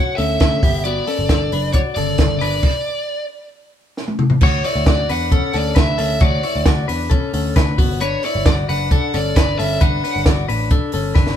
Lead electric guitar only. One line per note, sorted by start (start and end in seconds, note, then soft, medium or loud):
0.00 0.13 F#5 medium
0.16 0.84 E5 medium
0.84 1.72 D5 medium
1.73 1.79 C#5 medium
1.95 2.37 D5 medium
2.39 3.25 D5 medium
4.43 4.64 C#5 medium
4.65 4.85 D5 medium
4.88 5.10 D5 medium
5.11 5.56 F#5 loud
5.56 5.77 D5 medium
5.77 5.98 E5 loud
6.00 6.23 E5 medium
6.23 6.64 D5 medium
8.01 8.22 C#5 medium
8.25 8.46 D5 medium
8.47 8.53 D5 medium
8.69 9.15 F#5 loud
9.14 9.36 D5 medium
9.37 9.57 D5 medium
9.59 9.81 E5 medium
9.82 10.23 F#5 medium